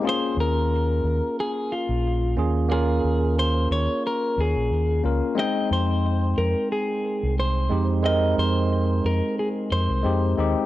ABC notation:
X:1
M:4/4
L:1/16
Q:"Swing 16ths" 1/4=90
K:Fm
V:1 name="Clean electric guitar"
c2 B6 A2 F4 z2 | A4 c2 d2 B2 A4 z2 | e2 c4 B2 A4 c3 z | e2 c4 B2 A2 c4 z2 |]
V:2 name="Tine electric piano"
[B,DFA]12- [B,DFA]2 [B,DFA]2 | [B,DFB]12 z2 [B,DFB]2 | [A,CEg]12- [A,CEg]2 [A,CEG]2 | [A,CEB]12 [A,CEG]2 [A,CEG]2 |]
V:3 name="Fingered electric bass" clef=bass
z2 E,,4 E,, z4 B,,,3 E,,2- | E,,2 E,,4 E,, z3 E,, B,,, E,,2 D,, z | z2 F,,4 F,, z4 C,,3 F,,2- | F,,2 F,,4 F,, z3 F,, C,, F,,2 E,, z |]